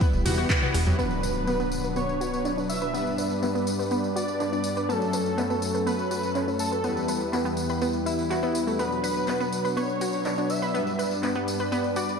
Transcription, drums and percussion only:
0.01 kick, tambourine
0.13 tambourine
0.26 open hi-hat, tambourine, low conga
0.38 tambourine
0.49 kick, clap, high tom, tambourine
0.62 high tom, tambourine
0.74 cross-stick, open hi-hat, tambourine
0.86 mid tom, tambourine, high conga
0.99 tambourine
1.11 tambourine
1.23 tambourine
1.35 tambourine
1.47 clap, tambourine
1.60 tambourine
1.72 tambourine
1.84 tambourine
1.96 tambourine
2.09 tambourine
2.21 tambourine
2.33 tambourine
2.45 clap, tambourine
2.58 tambourine
2.70 tambourine
2.82 tambourine
2.94 tambourine
3.07 tambourine
3.18 tambourine
3.30 tambourine
3.43 clap, tambourine
3.55 tambourine
3.67 tambourine
3.80 tambourine
3.91 tambourine
4.04 tambourine
4.16 tambourine
4.28 tambourine
4.40 clap, tambourine
4.53 tambourine
4.64 tambourine
4.77 tambourine
4.90 tambourine
5.02 tambourine
5.13 tambourine
5.26 tambourine
5.38 clap, tambourine
5.50 tambourine
5.62 tambourine
5.75 tambourine
5.87 tambourine
5.99 tambourine
6.11 tambourine
6.23 tambourine
6.35 clap, tambourine
6.48 tambourine
6.59 tambourine
6.72 tambourine
6.84 tambourine
6.97 tambourine
7.08 tambourine
7.21 tambourine
7.33 clap, tambourine
7.46 tambourine
7.57 tambourine
7.69 tambourine
7.82 tambourine
7.93 tambourine
8.06 tambourine
8.19 tambourine
8.31 clap, tambourine
8.43 tambourine
8.55 tambourine
8.67 tambourine
8.79 tambourine
8.92 tambourine
9.04 tambourine
9.16 tambourine
9.27 clap, tambourine
9.41 tambourine
9.52 tambourine
9.65 tambourine
9.77 tambourine
9.89 tambourine
10.01 tambourine
10.13 tambourine
10.25 clap, tambourine
10.38 tambourine
10.50 tambourine
10.62 tambourine
10.75 tambourine
10.87 tambourine
10.99 tambourine
11.11 tambourine
11.23 clap, tambourine
11.35 tambourine
11.48 tambourine
11.60 tambourine
11.72 tambourine
11.84 tambourine
11.96 tambourine
12.09 tambourine

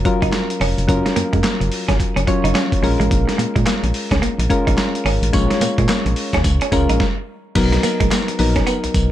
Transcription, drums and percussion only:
0.05 kick, closed hi-hat
0.22 kick, closed hi-hat
0.32 snare, clap, closed hi-hat
0.50 closed hi-hat
0.61 open hi-hat
0.78 closed hi-hat
0.89 kick, closed hi-hat
1.06 snare, closed hi-hat
1.16 closed hi-hat
1.33 kick, closed hi-hat
1.44 snare, clap, closed hi-hat
1.61 closed hi-hat
1.72 open hi-hat
1.89 kick, snare, closed hi-hat
2.00 kick, closed hi-hat
2.17 closed hi-hat
2.27 kick, closed hi-hat
2.45 closed hi-hat
2.55 snare, clap, closed hi-hat
2.72 kick, closed hi-hat
2.84 open hi-hat
3.01 closed hi-hat
3.11 kick, closed hi-hat
3.29 snare, closed hi-hat
3.39 closed hi-hat
3.56 kick, closed hi-hat
3.66 snare, clap, closed hi-hat
3.84 closed hi-hat
3.94 open hi-hat
4.11 kick, snare, closed hi-hat
4.23 closed hi-hat
4.40 closed hi-hat
4.50 kick, closed hi-hat
4.67 kick, closed hi-hat
4.78 snare, clap, closed hi-hat
4.95 closed hi-hat
5.06 open hi-hat
5.23 closed hi-hat
5.33 kick, closed hi-hat, tambourine
5.51 snare, closed hi-hat
5.61 closed hi-hat, tambourine
5.78 kick, closed hi-hat
5.89 snare, clap, closed hi-hat, tambourine
6.06 closed hi-hat
6.16 open hi-hat
6.33 kick, snare, closed hi-hat
6.44 kick, closed hi-hat, tambourine
6.61 closed hi-hat
6.72 kick, closed hi-hat, tambourine
6.89 closed hi-hat
7.00 kick, snare
7.55 kick, closed hi-hat, crash, tambourine
7.73 snare, closed hi-hat
7.83 closed hi-hat, tambourine
8.00 kick, closed hi-hat
8.11 snare, clap, closed hi-hat, tambourine
8.28 closed hi-hat
8.39 open hi-hat
8.56 kick, snare, closed hi-hat
8.67 closed hi-hat, tambourine
8.84 closed hi-hat
8.94 kick, closed hi-hat, tambourine

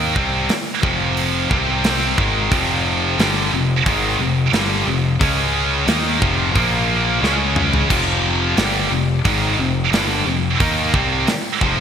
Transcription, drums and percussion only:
0.16 kick
0.49 snare, open hi-hat
0.83 kick
1.17 open hi-hat
1.51 kick
1.84 snare, open hi-hat
2.18 kick
2.52 kick, open hi-hat
3.19 snare, open hi-hat
3.86 kick, open hi-hat
4.53 snare, open hi-hat
5.21 kick, open hi-hat
5.88 snare, open hi-hat
6.22 kick
6.56 kick, open hi-hat
7.24 snare
7.56 mid tom
7.73 floor tom
7.90 kick, crash
8.57 snare, open hi-hat
9.25 kick, open hi-hat
9.93 snare, open hi-hat
10.60 kick, open hi-hat
10.94 kick
11.27 snare, open hi-hat
11.61 kick

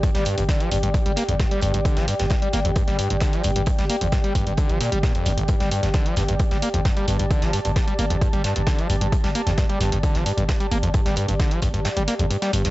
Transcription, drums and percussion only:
0.03 kick, closed hi-hat
0.15 snare, closed hi-hat
0.25 closed hi-hat, open hi-hat
0.38 closed hi-hat
0.49 kick, snare, closed hi-hat
0.60 closed hi-hat
0.71 closed hi-hat, open hi-hat
0.83 closed hi-hat
0.94 kick, closed hi-hat
1.06 closed hi-hat
1.16 snare, closed hi-hat, open hi-hat
1.29 closed hi-hat
1.40 kick, snare, closed hi-hat
1.51 closed hi-hat
1.61 closed hi-hat, open hi-hat
1.74 closed hi-hat
1.85 kick, closed hi-hat
1.97 snare, closed hi-hat
2.08 closed hi-hat, open hi-hat
2.20 snare, closed hi-hat
2.30 kick, snare, closed hi-hat
2.42 closed hi-hat
2.53 snare, closed hi-hat, open hi-hat
2.65 closed hi-hat
2.76 kick, closed hi-hat
2.88 snare, closed hi-hat
2.99 closed hi-hat, open hi-hat
3.10 closed hi-hat
3.20 kick, snare, closed hi-hat
3.33 closed hi-hat
3.44 closed hi-hat, open hi-hat
3.56 closed hi-hat
3.66 kick, closed hi-hat
3.79 snare, closed hi-hat
3.89 closed hi-hat, open hi-hat
4.01 closed hi-hat
4.12 kick, snare, closed hi-hat
4.24 closed hi-hat
4.35 kick, closed hi-hat, open hi-hat
4.47 closed hi-hat
4.57 kick, closed hi-hat
4.69 closed hi-hat
4.81 snare, closed hi-hat, open hi-hat
4.92 closed hi-hat
5.03 kick, snare, closed hi-hat
5.15 closed hi-hat
5.26 closed hi-hat, open hi-hat
5.38 closed hi-hat
5.48 kick, closed hi-hat
5.60 snare, closed hi-hat
5.71 closed hi-hat, open hi-hat
5.83 snare, closed hi-hat
5.94 kick, snare, closed hi-hat
6.06 closed hi-hat
6.16 snare, closed hi-hat, open hi-hat
6.28 closed hi-hat
6.39 kick, closed hi-hat
6.51 snare, closed hi-hat
6.62 closed hi-hat, open hi-hat
6.74 closed hi-hat
6.85 kick, snare, closed hi-hat
6.97 closed hi-hat
7.08 closed hi-hat, open hi-hat
7.19 closed hi-hat
7.31 kick, closed hi-hat
7.42 snare, closed hi-hat
7.53 closed hi-hat, open hi-hat
7.65 closed hi-hat
7.76 kick, snare, closed hi-hat
7.88 closed hi-hat
7.99 closed hi-hat, open hi-hat
8.10 closed hi-hat
8.21 kick, closed hi-hat
8.33 closed hi-hat
8.44 snare, closed hi-hat, open hi-hat
8.56 closed hi-hat
8.67 kick, snare, closed hi-hat
8.79 closed hi-hat
8.90 closed hi-hat, open hi-hat
9.01 closed hi-hat
9.12 kick, closed hi-hat
9.24 snare, closed hi-hat
9.35 closed hi-hat, open hi-hat
9.47 snare, closed hi-hat
9.58 kick, snare, closed hi-hat
9.69 closed hi-hat
9.80 snare, closed hi-hat, open hi-hat
9.92 closed hi-hat
10.03 kick, closed hi-hat
10.15 snare, closed hi-hat
10.26 closed hi-hat, open hi-hat
10.38 closed hi-hat
10.49 kick, snare, closed hi-hat
10.60 closed hi-hat
10.71 closed hi-hat, open hi-hat
10.83 closed hi-hat
10.94 kick, closed hi-hat
11.06 snare, closed hi-hat
11.16 closed hi-hat, open hi-hat
11.28 closed hi-hat
11.40 kick, snare, closed hi-hat
11.51 closed hi-hat
11.62 kick, closed hi-hat, open hi-hat
11.74 closed hi-hat
11.85 snare, closed hi-hat
11.97 closed hi-hat
12.08 snare, closed hi-hat, open hi-hat
12.19 closed hi-hat
12.31 closed hi-hat
12.42 snare, closed hi-hat
12.53 closed hi-hat, open hi-hat
12.65 snare, closed hi-hat

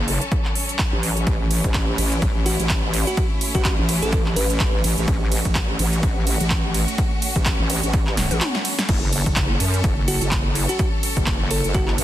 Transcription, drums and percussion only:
0.08 open hi-hat
0.21 closed hi-hat
0.32 kick, closed hi-hat
0.45 clap
0.55 open hi-hat
0.69 closed hi-hat
0.79 kick, clap, closed hi-hat
1.03 open hi-hat
1.17 closed hi-hat
1.27 kick, closed hi-hat, ride
1.51 open hi-hat, ride
1.64 kick, closed hi-hat
1.74 kick, clap, closed hi-hat, ride
1.98 open hi-hat, ride
2.12 closed hi-hat
2.22 kick, closed hi-hat, ride
2.46 open hi-hat, ride
2.60 closed hi-hat
2.69 kick, clap, closed hi-hat, ride
2.94 open hi-hat, ride
3.07 closed hi-hat
3.17 kick, closed hi-hat, ride
3.41 open hi-hat, ride
3.55 kick, closed hi-hat
3.65 kick, clap, closed hi-hat, ride
3.89 open hi-hat, ride
4.02 closed hi-hat
4.13 kick, closed hi-hat, ride
4.26 clap
4.36 open hi-hat, ride
4.50 closed hi-hat
4.60 kick, clap, closed hi-hat, ride
4.84 open hi-hat, ride
4.98 closed hi-hat
5.08 kick, closed hi-hat, ride
5.32 open hi-hat, ride
5.45 kick, closed hi-hat
5.55 kick, clap, closed hi-hat, ride
5.79 open hi-hat, ride
5.93 closed hi-hat
6.03 kick, closed hi-hat, ride
6.27 open hi-hat, ride
6.40 closed hi-hat
6.50 kick, clap, closed hi-hat, ride
6.74 open hi-hat, ride
6.88 closed hi-hat
6.98 kick, closed hi-hat, ride
7.22 open hi-hat, ride
7.36 kick, closed hi-hat
7.46 kick, clap, closed hi-hat, ride
7.70 open hi-hat, ride
7.83 closed hi-hat
7.93 kick, closed hi-hat, ride
8.07 clap
8.17 snare, open hi-hat, ride
8.31 closed hi-hat, high tom
8.41 clap, closed hi-hat, mid tom, ride
8.55 snare
8.65 open hi-hat, ride
8.79 snare, closed hi-hat
8.89 kick, closed hi-hat, crash, ride
9.13 open hi-hat, ride
9.26 kick, closed hi-hat
9.36 kick, clap, closed hi-hat, ride
9.60 open hi-hat, ride
9.74 closed hi-hat
9.84 kick, closed hi-hat, ride
10.08 open hi-hat, ride
10.21 closed hi-hat
10.31 kick, clap, closed hi-hat, ride
10.55 open hi-hat, ride
10.69 closed hi-hat
10.79 kick, closed hi-hat, ride
11.03 open hi-hat, ride
11.17 kick, closed hi-hat
11.26 kick, clap, closed hi-hat, ride
11.51 open hi-hat, ride
11.64 closed hi-hat
11.74 kick, closed hi-hat, ride
11.88 clap
11.98 open hi-hat, ride

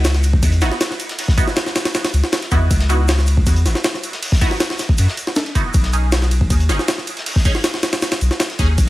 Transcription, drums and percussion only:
0.04 snare, ride, shaker
0.14 snare, closed hi-hat
0.23 ride, shaker
0.33 kick
0.43 kick, ride, shaker
0.52 closed hi-hat
0.61 snare, ride, shaker
0.71 snare
0.81 snare, ride, shaker
0.91 snare
1.00 ride, shaker
1.09 snare, ride
1.18 open hi-hat, ride
1.28 kick, snare
1.38 kick, ride, shaker
1.47 snare
1.56 snare, ride, shaker
1.66 snare
1.75 snare, ride, shaker
1.85 snare, ride
1.94 snare, ride, shaker
2.04 snare, ride
2.13 ride, shaker
2.24 snare
2.32 snare, ride, shaker
2.42 snare, ride
2.51 kick, ride, shaker
2.71 kick, ride, shaker
2.79 snare, ride
2.89 ride, shaker
3.08 snare, ride, shaker
3.18 snare, closed hi-hat
3.26 ride, shaker
3.37 kick
3.46 kick, ride, shaker
3.56 closed hi-hat
3.66 snare, ride, shaker
3.75 snare
3.84 snare, ride, shaker
3.94 snare
4.03 ride, shaker
4.13 snare, ride
4.23 open hi-hat, ride
4.32 kick, snare
4.41 kick, ride, shaker
4.51 snare
4.60 snare, ride, shaker
4.70 snare
4.78 snare, ride, shaker
4.89 kick
4.98 ride, shaker
5.08 snare
5.17 ride, shaker
5.27 snare
5.36 snare, ride, shaker
5.46 snare, ride
5.55 kick, ride, shaker
5.74 kick, ride, shaker
5.84 snare, ride
5.93 ride, shaker
6.12 snare, ride, shaker
6.21 snare, closed hi-hat
6.31 ride, shaker
6.41 kick
6.50 kick, ride, shaker
6.60 closed hi-hat
6.69 snare, ride, shaker
6.79 snare
6.88 snare, ride, shaker
6.98 snare
7.07 ride, shaker
7.17 snare, ride
7.26 open hi-hat, ride
7.36 kick, snare
7.45 kick, ride, shaker
7.55 snare
7.64 snare, ride, shaker
7.74 snare
7.83 snare, ride, shaker
7.93 snare, ride
8.02 snare, ride, shaker
8.11 snare, ride
8.21 ride, shaker
8.31 snare
8.40 snare, ride, shaker
8.50 snare, ride
8.59 kick, ride, shaker
8.78 kick, ride, shaker

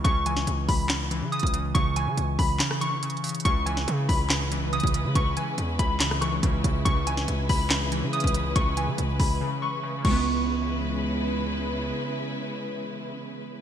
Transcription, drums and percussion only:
0.05 kick, closed hi-hat
0.26 closed hi-hat
0.37 snare
0.47 closed hi-hat
0.69 kick, open hi-hat
0.89 snare, clap, closed hi-hat
1.11 closed hi-hat
1.32 closed hi-hat
1.39 kick, closed hi-hat
1.47 closed hi-hat
1.54 closed hi-hat
1.75 kick, closed hi-hat
1.96 closed hi-hat
2.18 closed hi-hat
2.39 kick, open hi-hat
2.59 snare, clap, closed hi-hat
2.71 cross-stick
2.81 closed hi-hat
3.03 closed hi-hat
3.10 closed hi-hat
3.17 closed hi-hat
3.24 closed hi-hat, open hi-hat
3.29 closed hi-hat
3.35 closed hi-hat
3.40 closed hi-hat
3.45 kick, closed hi-hat
3.67 closed hi-hat
3.77 snare
3.88 closed hi-hat
4.09 kick, open hi-hat
4.30 snare, clap, closed hi-hat
4.52 closed hi-hat
4.73 closed hi-hat
4.80 kick, closed hi-hat
4.87 closed hi-hat
4.94 closed hi-hat
5.15 kick, closed hi-hat
5.37 closed hi-hat
5.58 closed hi-hat
5.79 kick, closed hi-hat
6.00 snare, clap, closed hi-hat
6.11 cross-stick
6.22 cross-stick, closed hi-hat
6.43 kick, closed hi-hat
6.64 kick, closed hi-hat
6.86 kick, closed hi-hat
7.07 closed hi-hat
7.17 snare
7.28 closed hi-hat
7.49 kick, open hi-hat
7.70 snare, clap, closed hi-hat
7.92 closed hi-hat
8.13 closed hi-hat
8.20 kick, closed hi-hat
8.27 closed hi-hat
8.34 closed hi-hat
8.56 kick, closed hi-hat
8.77 closed hi-hat
8.98 closed hi-hat
9.20 kick, open hi-hat
10.05 kick, crash

